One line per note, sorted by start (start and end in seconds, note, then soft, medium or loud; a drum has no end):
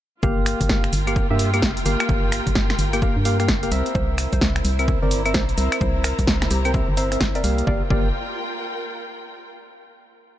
0.23 0.55 G1 loud
0.23 0.93 A#3 loud
0.23 3.72 F4 medium
0.23 0.93 G4 loud
0.23 0.93 F5 loud
0.23 kick loud
0.23 shaker soft
0.46 4.52 G5 medium
0.46 finger snap medium
0.46 open hi-hat loud
0.46 shaker medium
0.61 0.89 G1 loud
0.61 kick medium
0.61 closed hi-hat medium
0.61 shaker soft
0.68 5.09 A#4 medium
0.68 kick loud
0.68 snare loud
0.68 shaker soft
0.84 finger snap medium
0.84 closed hi-hat soft
0.93 1.25 G1 medium
0.93 open hi-hat loud
0.93 shaker medium
1.07 1.27 A#3 medium
1.07 1.27 G4 medium
1.07 1.27 F5 loud
1.07 closed hi-hat medium
1.07 claves medium
1.07 shaker soft
1.16 kick loud
1.16 shaker soft
1.30 1.64 G2 medium
1.30 1.50 A#3 loud
1.30 1.50 G4 medium
1.30 1.50 E5 loud
1.39 open hi-hat loud
1.39 shaker medium
1.54 1.71 A#3 medium
1.54 1.71 G4 medium
1.54 1.71 F5 loud
1.54 closed hi-hat medium
1.54 claves medium
1.54 shaker soft
1.62 1.82 F1 loud
1.62 kick loud
1.62 snare loud
1.62 closed hi-hat soft
1.62 shaker soft
1.77 closed hi-hat medium
1.86 1.97 G1 loud
1.86 2.90 A#3 loud
1.86 2.90 G4 medium
1.86 2.90 F5 loud
1.86 open hi-hat loud
1.86 shaker medium
2.00 finger snap medium
2.00 closed hi-hat medium
2.00 claves medium
2.00 shaker soft
2.09 2.41 G1 loud
2.09 kick loud
2.09 shaker soft
2.32 finger snap medium
2.32 open hi-hat loud
2.32 shaker medium
2.47 2.75 G1 loud
2.47 kick medium
2.47 closed hi-hat medium
2.47 shaker soft
2.55 kick loud
2.55 snare loud
2.55 shaker soft
2.70 finger snap medium
2.70 snare medium
2.70 closed hi-hat soft
2.79 3.11 G1 medium
2.79 open hi-hat loud
2.79 shaker medium
2.93 3.01 A#3 loud
2.93 3.01 G4 medium
2.93 3.01 G5 loud
2.93 closed hi-hat medium
2.93 claves medium
2.93 shaker soft
3.02 3.17 A#3 medium
3.02 3.17 G4 medium
3.02 3.17 F5 medium
3.02 kick loud
3.02 shaker soft
3.16 3.50 G2 medium
3.25 3.38 A#3 medium
3.25 3.38 G4 medium
3.25 3.38 F5 loud
3.25 open hi-hat loud
3.25 shaker medium
3.40 3.49 A#3 medium
3.40 3.49 G4 medium
3.40 3.49 F5 loud
3.40 finger snap soft
3.40 closed hi-hat medium
3.40 shaker soft
3.48 3.68 F1 loud
3.48 kick loud
3.48 snare loud
3.48 closed hi-hat soft
3.48 shaker soft
3.63 3.70 A#3 medium
3.63 3.70 G4 medium
3.63 3.70 F5 loud
3.63 closed hi-hat medium
3.72 3.83 C2 loud
3.72 4.76 C4 loud
3.72 7.67 E4 medium
3.72 4.76 A#4 medium
3.72 4.76 E5 loud
3.72 open hi-hat loud
3.72 shaker medium
3.86 7.67 C5 medium
3.86 closed hi-hat medium
3.86 shaker soft
3.95 4.27 C2 loud
3.95 4.12 C5 loud
3.95 kick loud
3.95 shaker soft
4.18 finger snap medium
4.18 open hi-hat loud
4.18 shaker medium
4.33 4.61 C2 loud
4.33 4.46 C5 loud
4.33 kick medium
4.33 closed hi-hat medium
4.33 shaker soft
4.41 kick loud
4.41 snare loud
4.41 shaker soft
4.56 finger snap medium
4.56 closed hi-hat soft
4.65 4.97 C2 loud
4.65 open hi-hat loud
4.65 shaker medium
4.69 7.67 A#5 medium
4.79 4.99 C4 medium
4.79 4.99 A#4 medium
4.79 4.99 E5 loud
4.79 closed hi-hat medium
4.79 claves medium
4.79 shaker soft
4.88 kick loud
4.88 shaker soft
5.02 5.36 G1 medium
5.02 5.22 C4 loud
5.02 5.22 A#4 medium
5.02 5.22 D5 loud
5.11 open hi-hat loud
5.11 shaker medium
5.26 5.43 C4 medium
5.26 5.43 A#4 medium
5.26 5.43 E5 loud
5.26 closed hi-hat medium
5.26 claves medium
5.26 shaker soft
5.34 5.54 A#1 loud
5.34 5.47 C5 medium
5.34 kick loud
5.34 snare loud
5.34 closed hi-hat soft
5.34 shaker soft
5.49 closed hi-hat medium
5.58 5.69 C2 loud
5.58 6.62 C4 medium
5.58 6.62 A#4 medium
5.58 6.62 E5 loud
5.58 open hi-hat loud
5.58 shaker medium
5.72 finger snap medium
5.72 closed hi-hat medium
5.72 claves medium
5.72 shaker soft
5.81 6.13 C2 loud
5.81 5.94 C5 medium
5.81 kick loud
5.81 shaker soft
6.04 6.26 A#4 loud
6.04 finger snap medium
6.04 open hi-hat loud
6.04 shaker medium
6.19 6.47 C2 loud
6.19 kick medium
6.19 closed hi-hat medium
6.19 shaker soft
6.27 kick loud
6.27 snare loud
6.27 shaker soft
6.42 finger snap medium
6.42 snare medium
6.42 closed hi-hat soft
6.51 6.83 C2 medium
6.51 6.64 G4 medium
6.51 open hi-hat loud
6.51 shaker medium
6.65 6.73 C4 loud
6.65 6.73 A#4 medium
6.65 6.73 G5 loud
6.65 closed hi-hat medium
6.65 claves medium
6.65 shaker soft
6.74 6.89 C4 medium
6.74 6.89 E5 medium
6.74 kick loud
6.74 shaker soft
6.89 7.17 G1 medium
6.97 7.10 C4 medium
6.97 7.10 A#4 medium
6.97 7.15 C5 loud
6.97 7.10 E5 loud
6.97 open hi-hat loud
6.97 shaker medium
7.12 7.21 C4 medium
7.12 7.21 A#4 medium
7.12 7.21 E5 loud
7.12 finger snap soft
7.12 closed hi-hat medium
7.12 shaker soft
7.21 7.32 G1 loud
7.21 kick loud
7.21 snare loud
7.21 closed hi-hat soft
7.21 shaker soft
7.35 7.43 C4 medium
7.35 7.43 A#4 medium
7.35 7.49 D5 medium
7.35 7.43 E5 loud
7.35 closed hi-hat medium
7.44 7.63 C2 loud
7.44 7.66 A#3 medium
7.44 7.66 G4 medium
7.44 7.66 F5 loud
7.44 open hi-hat loud
7.44 shaker medium
7.58 closed hi-hat medium
7.58 shaker soft
7.67 7.82 G1 loud
7.67 7.82 A#3 medium
7.67 9.49 F4 medium
7.67 7.82 G4 medium
7.67 7.82 D5 medium
7.67 7.82 F5 loud
7.67 kick loud
7.76 9.49 A#4 medium
7.84 9.49 G5 medium
7.90 8.12 G1 loud
7.90 8.09 A#3 medium
7.90 8.09 G4 medium
7.90 8.09 D5 medium
7.90 8.09 F5 loud
7.90 kick loud